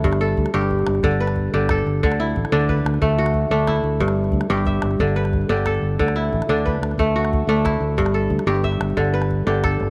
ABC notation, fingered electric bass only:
X:1
M:12/8
L:1/16
Q:3/8=121
K:Glyd
V:1 name="Fingered electric bass" clef=bass
G,,,4 D,, z G,,,4 G,,,2 G,,,6 G,,,4 G,,,2 | D,,4 A,,, z D,,4 D,,2 D,,6 D,,4 D,,2 | G,,,4 D,, z G,,,4 G,,,2 G,,,6 G,,,4 G,,,2 | D,,4 A,,, z D,,4 D,,2 D,,6 D,,4 D,,2 |
G,,,4 D,, z G,,,4 G,,,2 G,,,6 G,,,4 G,,,2 |]